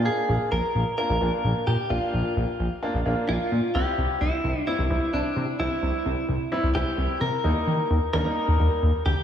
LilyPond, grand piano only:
\new Staff \with { instrumentName = "Grand piano" } { \time 4/4 \key bes \mixolydian \tempo 4 = 130 <bes d' f'>4 r4 <bes d' f'>16 r16 <bes d' f'>4 r8 | <bes d' f'>4~ <bes d' f'>16 r8. <bes d' f'>16 r16 <bes d' f'>4 r8 | <g c' e'>4~ <g c' e'>16 r8. <g c' e'>16 r16 <g c' e'>4 r8 | <g c' e'>4~ <g c' e'>16 r8. <g c' e'>16 r16 <g c' e'>4 r8 |
<g bes ees'>4 r8 <g bes d'>16 <g bes ees'>4~ <g bes ees'>16 r4 | }